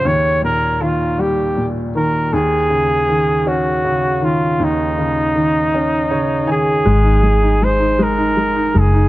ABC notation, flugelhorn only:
X:1
M:6/8
L:1/8
Q:3/8=53
K:Abmix
V:1 name="Flugelhorn"
d B F =G z B | A3 G2 F | E4- E A- | A2 c B2 A |]